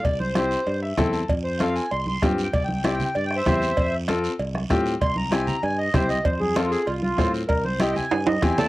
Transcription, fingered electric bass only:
\new Staff \with { instrumentName = "Fingered electric bass" } { \clef bass \time 4/4 \key f \major \tempo 4 = 193 c,2 g,4 e,4 | f,2 c,4 g,4 | c,2 g,4 e,4 | f,2 c,4 a,4 |
c,2 g,4 c,4 | f,2 c,4 a,4 | c,2 g,4 e,4 | }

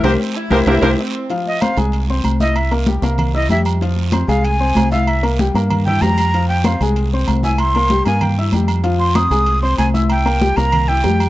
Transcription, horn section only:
\new Staff \with { instrumentName = "Horn section" } { \time 4/4 \key f \minor \tempo 4 = 191 <g' bes' c''>8 r4 <g' bes' c''>8 <g' bes' c''>8 <g' bes' c''>8 r4 | r1 | r1 | r1 |
r1 | r1 | r1 | r1 |
r1 | }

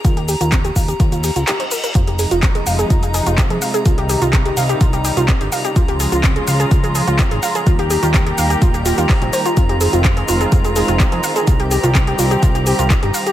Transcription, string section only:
\new Staff \with { instrumentName = "String section" } { \clef bass \time 4/4 \key f \minor \tempo 4 = 126 << { r1 | <f aes ees'>1 | <ees g ees'>1 | <f aes f'>1 |
<g bes g'>1 | <aes c' f'>1 | <g c' g'>1 | } \\ { r1 | c1~ | c1 | des1 |
ees1~ | ees1~ | ees1 | } >> }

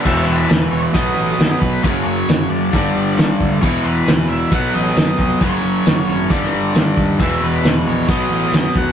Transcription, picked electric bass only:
\new Staff \with { instrumentName = "Picked electric bass" } { \clef bass \time 4/4 \key b \mixolydian \tempo 4 = 134 e,,8 e,,8 e,,8 e,,8 b,,8 a,,8 fis,8 b,,8 | fis,,8 fis,,8 fis,,8 fis,,8 g,,8 g,,8 g,,8 d,8 | e,,8 e,,8 e,,8 e,,8 b,,8 a,,8 fis,8 f,,8 | fis,,8 fis,,8 fis,,8 gis,,8 g,,8 g,,8 g,,8 dis,8 |
e,,8 e,,8 e,,8 ais,,8 b,,8 a,,8 fis,8 e,,8 | }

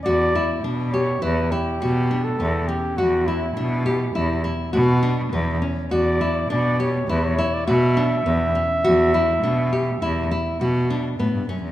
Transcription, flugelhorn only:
\new Staff \with { instrumentName = "Flugelhorn" } { \time 5/4 \key e \dorian \tempo 4 = 102 d''4 r8 cis''8 b'8 g'4~ g'16 a'8. g'8 | fis'8 e'2 r2 r8 | d''4 d''8 cis''8 b'16 cis''8 d''16 e''2~ | e''1 r4 | }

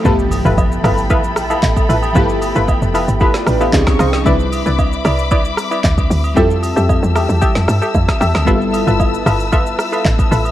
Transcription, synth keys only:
\new Staff \with { instrumentName = "Synth keys" } { \time 4/4 \key g \mixolydian \tempo 4 = 114 << { r1 | r2 <g' e''>16 <f' d''>16 <d' b'>16 <b g'>8 r8. | r1 | r1 |
r1 | } \\ { <f a b e' g'>1 | <f a b e' g'>2. <f c' des' ees' aes'>4 | <g c' d' e' b'>1 | <g c' e' f' a'>1 |
<g b e' f' g' a'>1 | } >> }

